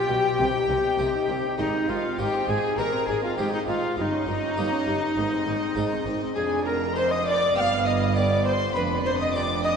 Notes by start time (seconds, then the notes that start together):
Already playing: D4 F4 G4 G5
0.08 B1 B2 G4
0.24 F4
0.38 C2 C3 C4
0.54 D#4
0.68 C2 C3 C4
0.84 D#4
0.98 C2 C3 C4 D#4
1.14 D#4
1.28 C2 C3 C4
1.45 D#4
1.58 G#1 G#2 D#4 D#5
1.74 C4
1.88 G#1 G#2 D#4 F4 F5
2.03 C4
2.17 G#1 G#2 G#3 C4 D#4 G4 G5
2.34 C4
2.48 G#1 G#2 D#4 G#4 G#5
2.63 C4
2.77 G#1 G#2 G#3 C4 D#4 A#4 B4 A#5
2.82 A#4
2.92 C4
3.07 G#1 G#2 D#4 G#4 G#5
3.22 C4 F4 F5
3.37 G#1 G#2 G#3 C4 D#4 G4 G5
3.52 C4 D#4 D#5
3.67 G#1 G#2 D#4 F4 F5
3.81 C4
3.97 G1 G2 D#4 F4 D#5
4.02 D#4
4.12 C#4
4.27 G1 G2 D#4
4.42 C#4
4.57 G1 G2 A#3 C#4 D#4
4.72 C#4
4.87 G1 G2 D#4
5.02 C#4
5.16 G#1 G#2 D#4
5.32 C4
5.46 G#1 G#2 D#4
5.61 C4
5.76 G#1 G#2 G#3 C4 D#4
5.91 C4
6.05 G#1 G#2 D#4
6.21 C4
6.35 F1 F2 D4 G#4 G#5
6.65 A#4 A#5
6.95 G#3 C4 D4 C5 C6
7.10 D#5 D#6
7.26 D5 D6
7.55 G1 G2 B3 F5 G5 F6
7.60 F5
7.86 D#5 D#6
8.15 B3 G4 D5 D6
8.45 C5 C6
8.74 F1 F2 D4 B4 B5
9.04 C5 C6
9.19 D#5 D#6
9.34 D4 G4 D5 D6
9.64 D#5 D#6